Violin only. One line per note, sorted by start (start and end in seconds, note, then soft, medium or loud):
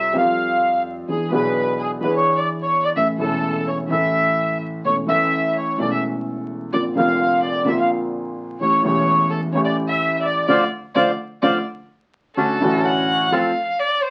0.00 0.14 E5 medium
0.17 0.82 F5 medium
1.09 1.31 G#4 soft
1.32 1.76 B4 medium
1.79 1.90 G#4 soft
2.01 2.12 B4 soft
2.13 2.35 C#5 medium
2.37 2.47 D5 medium
2.61 2.83 C#5 medium
2.84 2.89 D5 medium
2.96 3.07 E5 medium
3.19 3.63 A4 medium
3.67 3.78 C#5 soft
3.90 4.57 E5 medium
4.85 4.95 C#5 medium
5.09 5.52 E5 medium
5.56 5.78 C#5 soft
5.80 5.91 D5 soft
5.91 6.02 E5 soft
6.73 6.83 D5 medium
6.97 7.40 F5 medium
7.43 7.65 D5 soft
7.67 7.78 E5 soft
7.79 7.89 F5 soft
8.60 8.82 C#5 medium
8.84 9.27 C#5 medium
9.30 9.40 A4 medium
9.52 9.58 C#5 medium
9.64 9.75 D5 medium
9.87 10.15 E5 medium
10.16 10.22 E5 soft
10.22 10.45 D5 medium
10.47 10.63 D5 medium
10.95 11.10 D5 medium
11.42 11.57 D5 medium
12.37 12.87 A4 medium
12.85 13.34 F#5 medium
13.33 13.80 F5 medium
13.79 14.05 D5 medium
14.03 14.10 C5 medium